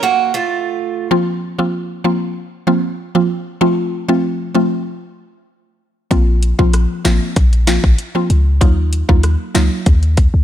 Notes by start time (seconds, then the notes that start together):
Already playing: downlifter
0.03 A#3 F#4
0.34 A3 F4
1.11 F3 A#3 C4 F4
1.59 F3 A#3 C4 F4
2.04 F3 A#3 C4 F4
2.67 F3 A#3 C4 F4
3.15 F3 A#3 C4 F4
3.61 F3 A3 C4 F4
4.09 F3 A3 C4 F4
4.55 F3 A3 C4 F4
6.11 A#1 F3 A#3 C4 F4, kick, closed hi-hat
6.43 closed hi-hat
6.59 A#1 F3 A#3 C4 F4, kick
6.73 cross-stick, closed hi-hat
7.05 A1 F3 A#3 C4 F4, snare, closed hi-hat
7.36 A#1, kick, closed hi-hat
7.53 closed hi-hat
7.67 F3 A#3 C4 F4, snare, closed hi-hat
7.84 A1, kick
7.98 closed hi-hat
8.15 F3 A#3 C4 F4
8.30 C#2, closed hi-hat
8.61 D#2 F#3 A#3 D#4 F4, kick, closed hi-hat
8.93 closed hi-hat
9.09 D#2 F#3 A#3 D#4 F4, kick
9.23 cross-stick, closed hi-hat
9.55 C#2 F#3 A#3 D#4 F4, snare, closed hi-hat
9.86 D#2, kick, closed hi-hat
10.03 closed hi-hat
10.17 kick, closed hi-hat
10.34 C#2